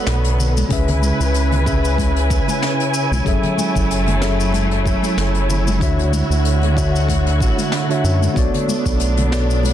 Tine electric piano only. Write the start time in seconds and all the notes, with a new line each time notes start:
Already playing: B3 F#4 A4 C#5 D5
0.68 C#3 C#4 G#4 B4
0.73 E5
1.65 C#3 C#4 G#4 B4 E5
3.23 F#3 C#4 G#4 A4
3.28 E5
4.21 F#3 C#4 G#4 A4 E5
5.78 D3 D4 F#4 C#5
5.83 E5
6.75 D3 D4 F#4 C#5 E5
7.89 D3 D4 F#4 C#5 E5
8.34 B3 F#4 A4 C#5
8.38 D5
9.31 B3 F#4 A4 C#5 D5